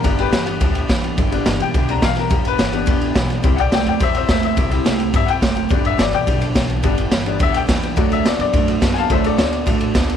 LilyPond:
<<
  \new Staff \with { instrumentName = "Upright piano" } { \time 4/4 \key g \major \tempo 4 = 212 bes'8 <g' b'>2. r8 | r4. g''4 bes''8 f''8 bes'8~ | bes'8 b'2. r8 | r8 <d'' fis'' g''>8 <d'' g''>8 <d'' g''>8 <c'' e''>8 <c'' e''>8 <c'' e''>8 e''8~ |
e''4. r8 e''8 <fis'' g''>4.~ | <fis'' g''>8 e''8 d''8 <d'' g''>4 r4. | r2 e''8 <fis'' g''>4. | r8 e''8 d''8 d''4 r4 <f'' aes'' a''>8 |
<c'' e''>8 <a' d''>8 <cis'' d''>2. | }
  \new Staff \with { instrumentName = "Upright piano" } { \time 4/4 \key g \major <g b d'>4. r2 r8 | r8 <g b d'>2 <g b d'>8 r4 | r4. <g b d'>2~ <g b d'>8 | <g c' e'>1 |
r8 <g c' e'>4. r2 | <g b d'>1 | <g b d'>8 r4 <g b d'>8 r2 | <fis a d'>1 |
<fis a d'>8 r2. r8 | }
  \new Staff \with { instrumentName = "Steel-string acoustic guitar" } { \time 4/4 \key g \major <g, d g b d' g'>8 <g b d' g'>8 <g b d' g'>8 <g b d' g'>8 <g, d g b d' g'>8 <g b d' g'>8 <g b d' g'>8 <g b d' g'>8 | <g, d g b d' g'>8 <g b d' g'>8 <g b d' g'>8 <g b d' g'>8 <g, d g b d' g'>8 <g b d' g'>8 <g b d' g'>8 <g b d' g'>8 | <g, d g b d' g'>8 <g b d' g'>8 <g b d' g'>8 <g b d' g'>8 <g, d g b d' g'>8 <g b d' g'>8 <g b d' g'>8 <g b d' g'>8 | <c g c' e' g'>8 <c' e' g'>8 <g c' e' g'>8 <c' e' g'>8 <c g c' e' g'>8 <c' e' g'>8 <g c' e' g'>8 <c' e' g'>8 |
<c g c' e' g'>8 <c' e' g'>8 <g c' e' g'>8 <c' e' g'>8 <c g c' e' g'>8 <c' e' g'>8 <g c' e' g'>8 <c' e' g'>8 | <g, d g b d' g'>8 <g b d' g'>8 <g b d' g'>8 <g b d' g'>8 <g, d g b d' g'>8 <g b d' g'>8 <g b d' g'>8 <g b d' g'>8 | <g, d g b d' g'>8 <g b d' g'>8 <g b d' g'>8 <g b d' g'>8 <g, d g b d' g'>8 <g b d' g'>8 <g b d' g'>8 <g b d' g'>8 | <d a d' fis' a'>8 <d' fis' a'>8 <a d' fis' a'>8 <d' fis' a'>8 <d a d' fis' a'>8 <d' fis' a'>8 <a d' fis' a'>8 <d' fis' a'>8 |
<d a d' fis' a'>8 <d' fis' a'>8 <a d' fis' a'>8 <d' fis' a'>8 <d a d' fis' a'>8 <d' fis' a'>8 <a d' fis' a'>8 <d' fis' a'>8 | }
  \new Staff \with { instrumentName = "Clean electric guitar" } { \clef bass \time 4/4 \key g \major <g, d>4 <g, e>4 <g, d>4 <g, e>4 | <g, d>4 <g, e>4 <g, d>4 <g, e>4 | <g, d>4 <g, e>4 <g, d>4 <g, e>4 | <c g>4 <c a>4 <c g>4 <c a>4 |
<c g>4 <c a>4 <c g>4 <c a>4 | <g, d>4 <g, e>4 <g, d>4 <g, e>4 | <g, d>4 <g, e>4 <g, d>4 <g, e>4 | <d a>4 <d b>4 <d a>4 <d b>4 |
<d a>4 <d b>4 <d a>4 <d b>4 | }
  \new Staff \with { instrumentName = "Upright bass" } { \clef bass \time 4/4 \key g \major g,,4 g,,4 d,4 e,4 | g,,4 g,,8 b,,8 b,,4 b,,4 | g,,4 g,,4 d,4 b,,4 | c,4 c,8 e,8 e,4 e,4 |
c,4 c,4 g,4 fis,,4 | g,,4 g,,8 b,,8 b,,4 b,,4 | g,,4 g,,4 d,4 e,4 | d,4 d,8 fis,8 fis,4 fis,4 |
d,4 d,4 a,4 d,4 | }
  \new DrumStaff \with { instrumentName = "Drums" } \drummode { \time 4/4 <bd cymr>8 cymr8 <cymr sn>8 cymr8 <bd cymr>8 cymr8 <bd cymr sn>8 cymr8 | <bd cymr>8 cymr8 <cymr sn>8 cymr8 <bd cymr>8 cymr8 <bd cymr sn>8 <cymr sn>8 | <bd cymr>8 cymr8 <cymr sn>8 cymr8 <bd cymr>8 cymr8 <bd cymr sn>8 <cymr sn>8 | <bd cymr>8 cymr8 <cymr sn>8 cymr8 <bd cymr>8 cymr8 <bd cymr sn>8 <cymr sn>8 |
<bd cymr>8 cymr8 <cymr sn>8 cymr8 <bd cymr>8 cymr8 <bd cymr sn>8 cymr8 | <bd cymr>8 cymr8 <cymr sn>8 cymr8 <bd cymr>8 cymr8 <bd cymr sn>8 cymr8 | <bd cymr>8 cymr8 <cymr sn>8 cymr8 <bd cymr>8 cymr8 <bd cymr sn>8 <cymr sn>8 | <bd cymr>8 cymr8 <cymr sn>8 cymr8 <bd cymr>8 cymr8 <bd cymr sn>8 <cymr sn>8 |
<bd cymr>8 cymr8 <cymr sn>8 cymr8 <bd cymr>8 cymr8 <bd cymr sn>8 cymr8 | }
>>